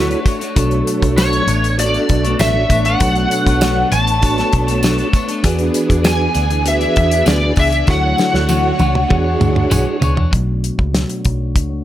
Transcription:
Already playing: picked electric bass D2, clean electric guitar D3 F#3 A3 D4, string machine A3 D4 F#4 C#5, tonewheel organ E4 F#4 A4 C#5, electric slide guitar B4
0.09 clean electric guitar A3 D4 F#4 C#5, closed hi-hat
0.24 clean electric guitar A3 D4 F#4 C#5, kick, closed hi-hat, tambourine
0.39 clean electric guitar A3 D4 F#4 C#5, closed hi-hat
0.56 picked electric bass B1, clean electric guitar B2 F#3 A3 D4 A4 C#5, string machine B3 D4, tonewheel organ D4 F#4 A4 C#5, kick, closed hi-hat, tambourine
0.71 closed hi-hat
0.87 closed hi-hat, tambourine
1.00 picked electric bass B1, clean electric guitar D4 A4 C#5, kick, closed hi-hat
1.04 clean electric guitar A3
1.16 clean electric guitar B2 F#3 A3 D4 A4 C#5, electric slide guitar C#5, snare, tambourine
1.33 closed hi-hat
1.46 picked electric bass A1, clean electric guitar A3 D4 A4 C#5, closed hi-hat, tambourine
1.64 closed hi-hat
1.77 clean electric guitar A3 D4 A4 C#5, tonewheel organ D4 F#4 A4 C5, electric slide guitar D5, closed hi-hat
1.86 tonewheel organ D5
1.94 clean electric guitar A3 D4 A4, closed hi-hat
2.09 picked electric bass B1, kick, closed hi-hat, tambourine
2.23 clean electric guitar A3 D4 A4 C#5, closed hi-hat
2.39 picked electric bass A1, clean electric guitar B2 F#3 A3 D4 A4 C#5, electric slide guitar E5, snare, tambourine
2.54 clean electric guitar A3 D4 A4 C#5
2.69 picked electric bass A1, clean electric guitar A3 D4 A4 C#5, kick, closed hi-hat, tambourine
2.85 clean electric guitar A3 D4 A4 C#5, electric slide guitar F#5, closed hi-hat
2.99 picked electric bass B1, clean electric guitar B2 F#3 A3 D4 A4 C#5, tonewheel organ D4 F#4 A4 C#5, kick, closed hi-hat, tambourine
3.15 closed hi-hat
3.31 closed hi-hat, tambourine
3.46 picked electric bass B1, clean electric guitar A3 D4 A4 C#5, kick, closed hi-hat
3.61 clean electric guitar B2 F#3 A3 D4 A4 C#5, snare, tambourine
3.91 picked electric bass A1, clean electric guitar A3 D4 A4 C#5, electric slide guitar A5, closed hi-hat, tambourine
4.07 closed hi-hat
4.21 clean electric guitar A3 D4 A4 C#5, tonewheel organ D4 F#4 A4 C#5, kick, closed hi-hat
4.37 clean electric guitar A3 D4 A4 C#5, snare, closed hi-hat
4.53 picked electric bass B1, kick, closed hi-hat
4.67 clean electric guitar D4 A4 C#5, closed hi-hat
4.71 clean electric guitar A3
4.83 clean electric guitar B2 F#3 A3 D4 A4 C#5, snare, tambourine
4.98 clean electric guitar A3 D4 A4 C#5, closed hi-hat
5.13 clean electric guitar A3 D4 A4 C#5, kick, closed hi-hat, tambourine
5.28 clean electric guitar A3 D4 A4 C#5, closed hi-hat
5.43 picked electric bass E2, clean electric guitar E3 B3 D4 G#4 D5, string machine E3 G#4, tonewheel organ D4 F#4 G#4 B4, kick, closed hi-hat, tambourine
5.59 closed hi-hat
5.74 closed hi-hat, tambourine
5.89 picked electric bass E2, clean electric guitar D4 G#4 D5, kick, closed hi-hat
6.03 clean electric guitar E3 B3 D4 G#4 D5, electric slide guitar G#5, snare, tambourine
6.34 picked electric bass D2, clean electric guitar B3 D4 G#4 D5, closed hi-hat, tambourine
6.51 closed hi-hat
6.65 tonewheel organ D4 F#4 G#4 B4, electric slide guitar E5, closed hi-hat
6.79 clean electric guitar G#4 D5, closed hi-hat
6.83 clean electric guitar D4
6.96 picked electric bass E2, kick, closed hi-hat
7.10 clean electric guitar D4 G#4 D5, closed hi-hat
7.25 picked electric bass D2, clean electric guitar E3 B3 D4 G#4 D5, electric slide guitar D5, snare, tambourine
7.40 clean electric guitar D4 G#4 D5
7.55 picked electric bass C#2, clean electric guitar B3 D4 G#4 D5, kick, open hi-hat, tambourine
7.59 electric slide guitar E5
7.70 clean electric guitar D4 G#4 D5, closed hi-hat
7.86 picked electric bass D2, clean electric guitar D3 F#3 A3 D4 F#4 C#5, string machine A3 D4 F#4 C#5, tonewheel organ E4 F#4 A4 C#5, kick, snare, tambourine
7.90 electric slide guitar F#5
8.18 snare, tambourine
8.32 picked electric bass D2, clean electric guitar A3 D4 F#4 C#5, snare
8.47 clean electric guitar D3 F#3 A3 D4 F#4 C#5, high tom, tambourine
8.78 picked electric bass C#2, clean electric guitar A3 D4 F#4, high tom, tambourine
8.82 clean electric guitar C#5
8.95 mid tom
9.08 picked electric bass E2, string machine E3 G#3 D4, clean electric guitar B3 D4 G#4 C#5, tonewheel organ D4 F#4 G#4 C#5, kick, mid tom
9.24 clean electric guitar D4 G#4 C#5
9.41 picked electric bass D2, mid tom, tambourine
9.56 mid tom
9.70 picked electric bass B1, clean electric guitar E3 B3 D4 G#4 C#5, mid tom, tambourine
9.85 clean electric guitar D4 G#4 C#5
10.00 picked electric bass C#2, clean electric guitar B3 D4 G#4 C#5, floor tom, tambourine
10.15 picked electric bass E2, clean electric guitar D4 G#4 C#5, floor tom
10.31 picked electric bass B1, clean electric guitar B2 F#3 A3 D4 F#4, kick, closed hi-hat
10.64 closed hi-hat
10.77 picked electric bass C#2, clean electric guitar A3 D4 F#4 C#5, kick
10.92 clean electric guitar B2 F#3 A3 D4 F#4 C#5, snare, closed hi-hat
11.09 closed hi-hat
11.24 picked electric bass B1, clean electric guitar A3 D4 F#4 C#5, kick, closed hi-hat
11.55 picked electric bass C#2, kick, closed hi-hat
11.69 clean electric guitar A3 D4 F#4 C#5

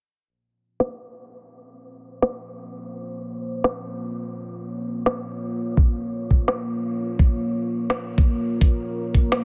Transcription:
0.09 ambient pad A#3
0.20 ambient pad F4
0.34 ambient pad C5
0.50 ambient pad C#5
0.80 snare
2.22 snare
3.64 snare
5.06 snare
5.77 kick
6.31 kick
6.48 snare
6.67 ambient pad A#4
7.19 kick
7.90 snare
8.18 kick
8.61 kick
9.15 kick
9.32 snare

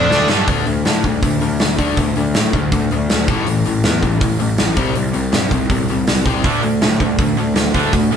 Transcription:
Already playing: lead electric guitar D4 D5
0.09 picked electric bass D2, distorted electric guitar D3 A3 D4, snare
0.28 picked electric bass G2, distorted electric guitar D3 A3 D4, snare
0.48 picked electric bass D2, distorted electric guitar D3 A3 D4, kick, open hi-hat
0.67 picked electric bass D2, distorted electric guitar D3 A3, open hi-hat
0.85 picked electric bass A2, distorted electric guitar D3 A3, snare, open hi-hat
1.04 picked electric bass D2, distorted electric guitar D3 A3, kick, open hi-hat
1.22 picked electric bass D2, distorted electric guitar D3 A3, kick, open hi-hat
1.41 picked electric bass D2, distorted electric guitar D3 A3, open hi-hat
1.60 picked electric bass D2, distorted electric guitar D3 A3, snare, open hi-hat
1.79 picked electric bass D2, distorted electric guitar D3 A3 D4, kick, open hi-hat
1.97 picked electric bass D2, distorted electric guitar D3 A3, kick, open hi-hat
2.16 picked electric bass D2, distorted electric guitar D3 A3, open hi-hat
2.34 picked electric bass A2, distorted electric guitar D3 A3, snare, open hi-hat
2.53 picked electric bass D2, distorted electric guitar D3 A3, kick, open hi-hat
2.72 picked electric bass D2, distorted electric guitar D3 A3, kick, open hi-hat
2.91 picked electric bass D2, distorted electric guitar D3 A3, open hi-hat
3.10 picked electric bass D2, distorted electric guitar D3 A3, snare, open hi-hat
3.28 picked electric bass A1, distorted electric guitar A2 E3 A3, kick, open hi-hat
3.47 picked electric bass A1, distorted electric guitar A2 E3, open hi-hat
3.66 picked electric bass A1, distorted electric guitar A2 E3, open hi-hat
3.83 picked electric bass E2, distorted electric guitar A2 E3, snare, open hi-hat
4.02 picked electric bass A1, distorted electric guitar A2 E3, kick, open hi-hat
4.21 picked electric bass A1, distorted electric guitar A2 E3, kick, open hi-hat
4.39 picked electric bass A1, distorted electric guitar A2 E3, open hi-hat
4.58 picked electric bass A1, distorted electric guitar A2 E3, snare, open hi-hat
4.76 picked electric bass C2, distorted electric guitar C3 G3 C4, kick, open hi-hat
4.95 picked electric bass C2, distorted electric guitar C3 G3, open hi-hat
5.13 picked electric bass C2, distorted electric guitar C3 G3, open hi-hat
5.32 picked electric bass G2, distorted electric guitar C3 G3, snare, open hi-hat
5.51 picked electric bass C2, distorted electric guitar C3 G3, kick, open hi-hat
5.70 picked electric bass C2, distorted electric guitar C3 G3, kick, open hi-hat
5.88 picked electric bass C2, distorted electric guitar C3 G3, open hi-hat
6.07 picked electric bass C2, distorted electric guitar C3 G3, snare, open hi-hat
6.26 picked electric bass C2, distorted electric guitar C3 G3 C4, kick, open hi-hat
6.44 picked electric bass D2, distorted electric guitar D3 A3 D4, kick, open hi-hat
6.63 picked electric bass D2, distorted electric guitar D3 A3, open hi-hat
6.82 picked electric bass A2, distorted electric guitar D3 A3, snare, open hi-hat
7.00 picked electric bass D2, distorted electric guitar D3 A3, kick, open hi-hat
7.18 picked electric bass D2, distorted electric guitar D3 A3, kick, open hi-hat
7.37 picked electric bass D2, distorted electric guitar D3 A3, open hi-hat
7.55 picked electric bass D2, distorted electric guitar D3 A3, snare, open hi-hat
7.74 picked electric bass D2, distorted electric guitar D3 A3 D4, kick, open hi-hat
7.93 picked electric bass D2, distorted electric guitar D3 A3, kick, open hi-hat
8.11 picked electric bass D2, distorted electric guitar D3 A3, open hi-hat

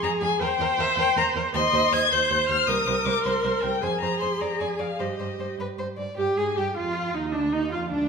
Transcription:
Already playing: viola G#4
0.02 cello F2, violin G#4 A#5
0.21 cello F2, violin G#4 G#5
0.40 cello E2, violin A#4 G5, viola C5
0.60 cello E2, violin A#4
0.78 cello E2, violin A#4 E5
0.97 cello E2, violin A#4 G5
1.16 cello E2, violin A#4 A#5
1.35 cello E2, violin A#4
1.54 cello D#2, violin C5 C6, viola D#5
1.73 cello D#2, violin C5
1.92 cello D#2, violin C5 G#6
2.11 cello D#2, violin C5 G6, viola C5
2.30 cello D#2, violin C5
2.49 cello D#2, violin C5 F6
2.67 cello C2, viola A#4, violin C5 D#6
2.86 cello C2, violin C5
3.05 cello C2, violin C5 D6
3.24 cello C2, violin C5 C6
3.44 cello C2, violin C5
3.62 cello C2, violin C5 G5
3.82 cello F2, viola G#4, violin C5 G#5
4.01 cello F2, violin C5 A#5
4.20 cello F2, violin C5 C6
4.41 cello F2, violin D5 A#5
4.60 cello F2, violin D5 G#5
4.79 cello F2, violin D5 F5
4.99 cello G2, viola G4, violin C5 D#5
5.19 cello G2, violin C5
5.39 cello G2, violin C5
5.58 cello G2, violin B4
5.78 cello G2, violin C5
5.98 cello G2, violin D5
6.17 cello G2, viola G4, violin G4
6.36 cello G#2, viola G#4, violin G#4
6.56 cello G2, viola G4, violin G4
6.75 cello F2, viola F4, violin F4
7.14 cello D#2, viola D#4, violin D#4
7.32 cello D2, viola D4, violin D4
7.52 cello D#2, violin D#4, viola D#4
7.71 cello F2, violin F4, viola F4
7.90 cello D2, violin D4, viola D4

